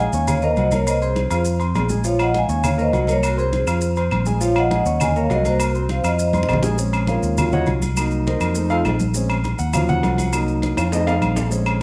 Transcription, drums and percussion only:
0.13 high conga soft
0.13 maracas medium
0.28 high conga soft
0.28 low conga medium
0.28 low agogo loud
0.28 maracas medium
0.42 high conga soft
0.42 maracas soft
0.56 high conga medium
0.56 low agogo medium
0.56 maracas soft
0.71 high conga medium
0.71 low agogo medium
0.71 maracas medium
0.87 high conga soft
0.87 low agogo loud
0.87 maracas loud
1.02 high conga soft
1.02 maracas soft
1.16 high conga loud
1.16 low agogo medium
1.16 maracas soft
1.31 high conga soft
1.31 low agogo loud
1.31 maracas medium
1.45 high conga soft
1.45 maracas medium
1.60 high conga soft
1.60 low agogo medium
1.60 maracas soft
1.75 high conga medium
1.75 low timbale medium
1.75 low agogo loud
1.75 maracas soft
1.89 high conga medium
1.89 maracas medium
2.04 high conga soft
2.04 maracas loud
2.19 high conga soft
2.19 low agogo loud
2.19 claves medium
2.19 maracas soft
2.34 high conga medium
2.34 low agogo medium
2.34 maracas soft
2.49 high conga soft
2.49 maracas medium
2.64 high conga soft
2.64 low conga medium
2.64 low agogo loud
2.64 claves medium
2.64 maracas medium
2.79 high conga soft
2.79 maracas soft
2.93 high conga medium
2.93 low agogo medium
2.93 maracas soft
3.07 high conga medium
3.07 low agogo medium
3.07 maracas medium
3.23 high conga soft
3.23 low agogo loud
3.23 claves medium
3.23 maracas medium
3.38 high conga soft
3.38 maracas soft
3.53 high conga medium
3.53 low agogo medium
3.53 maracas soft
3.67 high conga soft
3.67 low agogo loud
3.67 claves medium
3.67 maracas medium
3.81 high conga soft
3.81 maracas medium
3.96 high conga soft
3.96 low agogo loud
3.96 maracas soft
4.11 high conga medium
4.11 low agogo loud
4.11 claves medium
4.11 maracas soft
4.26 high conga medium
4.26 maracas medium
4.41 maracas medium
4.56 high conga soft
4.56 low agogo loud
4.56 claves medium
4.56 maracas soft
4.71 high conga medium
4.71 low agogo medium
4.71 maracas soft
4.86 high conga soft
4.86 maracas medium
5.00 high conga soft
5.00 low conga medium
5.00 low agogo loud
5.00 claves medium
5.00 maracas medium
5.16 high conga soft
5.16 maracas soft
5.30 high conga medium
5.30 low timbale medium
5.30 low agogo medium
5.30 maracas soft
5.45 high conga medium
5.45 low agogo medium
5.45 maracas medium
5.60 high conga soft
5.60 low agogo loud
5.60 claves medium
5.60 maracas loud
5.75 high conga soft
5.75 maracas soft
5.89 high conga medium
5.89 low agogo medium
5.89 maracas soft
6.04 high conga soft
6.04 low agogo loud
6.04 claves medium
6.04 maracas medium
6.19 high conga soft
6.19 maracas medium
6.33 high conga loud
6.33 low agogo medium
6.33 maracas soft
6.43 high conga medium
6.49 low timbale medium
6.49 low agogo loud
6.49 claves medium
6.49 maracas soft
6.53 low conga loud
6.63 low conga medium
6.63 maracas medium
6.78 high conga soft
6.78 maracas loud
6.93 high conga soft
6.93 low agogo loud
6.93 claves medium
6.93 maracas soft
7.07 high conga medium
7.07 low agogo medium
7.07 maracas soft
7.23 high conga soft
7.23 maracas medium
7.37 high conga soft
7.37 low conga medium
7.37 low agogo loud
7.37 claves medium
7.37 maracas medium
7.52 high conga soft
7.52 low conga medium
7.52 maracas soft
7.66 high conga loud
7.66 low agogo medium
7.66 maracas soft
7.82 high conga medium
7.82 low agogo medium
7.82 maracas medium
7.96 high conga soft
7.96 low agogo loud
7.96 claves medium
7.96 maracas loud
8.11 high conga soft
8.11 maracas soft
8.26 high conga medium
8.26 low agogo medium
8.26 maracas soft
8.41 high conga soft
8.41 low agogo loud
8.41 claves medium
8.41 maracas medium
8.55 high conga soft
8.55 maracas medium
8.70 low agogo loud
8.70 maracas soft
8.85 high conga medium
8.85 low timbale medium
8.85 low agogo loud
8.85 claves medium
8.85 maracas soft
9.00 high conga medium
9.00 maracas medium
9.14 high conga soft
9.14 maracas loud
9.29 high conga soft
9.29 low agogo loud
9.29 claves medium
9.29 maracas soft
9.44 high conga medium
9.44 low agogo medium
9.44 maracas soft
9.59 high conga soft
9.59 maracas medium
9.73 high conga soft
9.73 low conga medium
9.73 low agogo loud
9.73 claves medium
9.73 maracas medium
9.88 high conga soft
9.88 low conga medium
9.88 maracas soft
10.03 high conga loud
10.03 low timbale medium
10.03 low agogo medium
10.03 maracas soft
10.18 high conga medium
10.18 low agogo medium
10.18 maracas medium
10.33 high conga soft
10.33 low agogo loud
10.33 claves medium
10.33 maracas medium
10.48 high conga soft
10.48 maracas soft
10.62 high conga medium
10.62 low agogo medium
10.62 maracas soft
10.77 high conga soft
10.77 high timbale medium
10.77 low agogo loud
10.77 claves medium
10.77 maracas medium
10.92 low timbale medium
10.92 maracas medium
11.07 high conga soft
11.07 low timbale loud
11.07 low agogo medium
11.07 maracas soft
11.22 high conga medium
11.22 low agogo loud
11.22 claves medium
11.22 maracas soft
11.36 high conga medium
11.36 low timbale loud
11.36 maracas medium
11.51 high conga soft
11.51 maracas medium
11.66 high conga soft
11.66 low agogo loud
11.66 claves medium
11.66 maracas soft

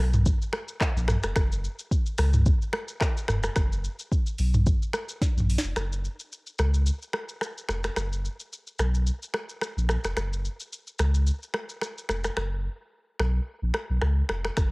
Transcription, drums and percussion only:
0.13 mid tom loud
0.13 shaker medium
0.26 kick loud
0.26 shaker medium
0.42 shaker soft
0.53 finger snap medium
0.53 cross-stick loud
0.68 shaker medium
0.81 finger snap medium
0.81 kick loud
0.81 cross-stick loud
0.81 clap medium
0.81 shaker medium
0.97 shaker soft
1.08 finger snap medium
1.08 cross-stick loud
1.08 mid tom medium
1.08 shaker medium
1.23 finger snap medium
1.23 cross-stick medium
1.23 shaker medium
1.36 finger snap medium
1.36 kick loud
1.36 cross-stick loud
1.36 shaker medium
1.52 shaker medium
1.64 shaker medium
1.79 shaker medium
1.91 kick loud
1.91 shaker medium
2.06 shaker soft
2.18 finger snap medium
2.18 cross-stick loud
2.18 open hi-hat medium
2.18 shaker medium
2.34 mid tom medium
2.34 shaker medium
2.46 kick loud
2.46 shaker medium
2.62 shaker soft
2.73 finger snap medium
2.73 cross-stick loud
2.88 shaker medium
3.01 finger snap medium
3.01 kick loud
3.01 cross-stick loud
3.01 clap medium
3.01 shaker medium
3.17 shaker soft
3.28 finger snap medium
3.28 cross-stick loud
3.28 mid tom medium
3.28 shaker medium
3.43 finger snap medium
3.43 cross-stick medium
3.43 shaker medium
3.56 finger snap medium
3.56 kick loud
3.56 cross-stick loud
3.56 shaker medium
3.72 shaker medium
3.84 shaker medium
3.99 shaker medium
4.12 kick loud
4.12 shaker medium
4.26 shaker soft
4.38 open hi-hat medium
4.38 shaker medium
4.54 mid tom medium
4.54 shaker medium
4.66 kick loud
4.66 shaker medium
4.82 shaker soft
4.93 finger snap medium
4.93 cross-stick loud
4.93 shaker medium
5.09 shaker medium
5.21 kick loud
5.21 snare medium
5.21 shaker medium
5.38 mid tom medium
5.38 shaker soft
5.50 open hi-hat medium
5.50 shaker medium
5.58 snare loud
5.64 shaker medium
5.76 finger snap medium
5.76 cross-stick medium
5.76 shaker medium
5.93 shaker medium
6.05 shaker medium
6.19 shaker medium
6.32 shaker medium
6.47 shaker soft
6.59 finger snap medium
6.59 cross-stick loud
6.59 shaker medium
6.74 shaker medium
6.86 shaker medium
7.02 shaker soft
7.13 finger snap medium
7.13 cross-stick loud
7.29 shaker medium
7.41 finger snap medium
7.41 cross-stick medium
7.41 shaker medium
7.58 shaker soft
7.69 finger snap medium
7.69 cross-stick medium
7.69 shaker medium
7.84 finger snap medium
7.84 cross-stick medium
7.84 shaker medium
7.96 finger snap medium
7.96 cross-stick loud
7.96 shaker medium
8.13 shaker medium
8.25 shaker soft
8.40 shaker medium
8.53 shaker medium
8.67 shaker soft
8.79 finger snap medium
8.79 cross-stick medium
8.79 shaker medium
8.94 shaker medium
9.07 shaker medium
9.23 shaker soft
9.34 finger snap medium
9.34 cross-stick loud
9.49 shaker medium
9.61 finger snap medium
9.61 cross-stick medium
9.61 shaker medium
9.78 shaker soft
9.89 finger snap medium
9.89 cross-stick loud
9.89 shaker medium
10.04 finger snap medium
10.04 cross-stick medium
10.04 shaker medium
10.17 finger snap medium
10.17 cross-stick medium
10.17 shaker medium
10.33 shaker medium
10.45 shaker medium
10.60 shaker medium
10.73 shaker medium
10.87 shaker soft
10.99 finger snap medium
10.99 cross-stick loud
10.99 shaker medium
11.14 shaker medium
11.27 shaker medium
11.43 shaker soft
11.54 finger snap medium
11.54 cross-stick loud
11.69 shaker medium
11.81 finger snap medium
11.81 cross-stick medium
11.81 shaker medium
11.98 shaker soft
12.09 finger snap medium
12.09 cross-stick loud
12.09 shaker medium
12.24 finger snap medium
12.24 cross-stick medium
12.24 shaker medium
12.37 finger snap medium
12.37 cross-stick medium
13.20 finger snap medium
13.20 cross-stick loud
13.74 finger snap medium
13.74 cross-stick loud
14.02 finger snap medium
14.02 cross-stick medium
14.29 finger snap medium
14.29 cross-stick medium
14.45 finger snap medium
14.45 cross-stick medium
14.57 finger snap medium
14.57 kick loud
14.57 cross-stick medium
14.57 shaker medium

